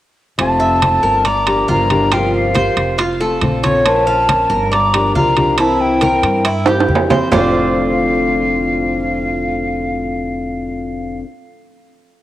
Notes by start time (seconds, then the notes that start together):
0.38 F1 C3 A3 C4 F4 A5, high conga, high timbale
0.60 E5, high conga
0.82 A3 C4 F4, high conga, high timbale
1.03 G1 A#4, high conga
1.25 D5 A#5, muted steel-string acoustic guitar stroke, high conga, high timbale
1.47 F3 A#3 D4 G4, high conga, high timbale
1.68 G1 F3 A#3 D4 F4 G4 A#5, high conga
1.90 F3 A#3 D4 G4, high conga, high timbale
2.12 C3 F3 A#3 F4 G4 G5, high timbale
2.34 F5, high conga
2.54 F3 A#3 F4 G4 C5, high conga, high timbale
2.77 F1, high conga, high timbale
2.98 F4, muted steel-string acoustic guitar stroke, high conga, high timbale
3.20 A3 C4 F4 A4, high conga
3.41 A#1 D3 A3 C4 F4, high conga, high timbale
3.63 A3 C4 F4 C#5, high conga, high timbale
3.85 F3 A#3 C#4 F4 A5, high conga, high timbale
4.07 F5, high conga
4.28 F3 A#3 C#4 F4, high conga, high timbale
4.50 G1 A#4, high conga
4.72 D5 A#5, muted steel-string acoustic guitar stroke, high conga, high timbale
4.94 F3 A#3 D4 G4, high conga, high timbale
5.15 C2 F3 A#3 D4 F4 G4 A#5, high conga
5.36 F3 A#3 D4 G4, high conga, high timbale
5.58 C3 E3 A#3 C4 E4 A5, high conga, high timbale
5.80 G5, high conga
6.01 E3 A#3 C4 E4 A#4, high conga, high timbale
6.23 G2, high conga, high timbale
6.45 E4, muted steel-string acoustic guitar stroke, high conga, high timbale
6.66 E3 A#3 C4 E4 G4, high conga, high timbale
6.80 high timbale
6.89 F2 E3 A#3 C4 E4, high conga
6.95 low timbale
7.09 E3 A#3 C4 E4 C5, high conga, low timbale
7.31 F1 F2 A2 D3 A3 C4 F4 C5 D5 F5, low conga, low timbale